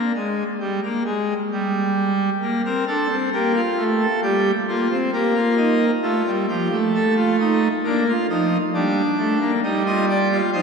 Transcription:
Already playing: A#3
0.15 G#3
0.60 G3
0.83 A#3
1.05 G#3
1.52 G3
2.42 A#3
2.65 C4 A#4
2.87 D4 A4
3.10 C4
3.33 A#3 G4
3.56 F4
3.77 A3
4.01 A4
4.23 G3 G4
4.68 A#3 F4
4.91 C4
5.13 A#3 G4
5.35 F4
5.57 D#4
6.03 A3 F4
6.26 G3
6.49 F3 G4
6.72 A3
6.95 A4
7.17 F4
7.40 D#4
7.85 A#3 D4
8.08 F4
8.29 F3 D#4
8.74 G3 D4
9.18 A3
9.41 A#3
9.63 G3 D#4
9.86 F4 D#5
10.09 G4 D5
10.31 F4
10.53 F3 D#4 C5

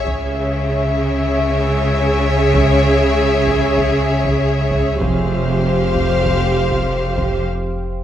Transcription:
0.06 C#2 C#3 G#4 C#5 E5, taiko
2.54 taiko
3.47 taiko
3.78 taiko
4.24 taiko
4.71 taiko
5.00 F1 F2 G4 C5 F5, taiko
5.95 taiko
6.25 taiko
6.71 taiko
7.18 taiko

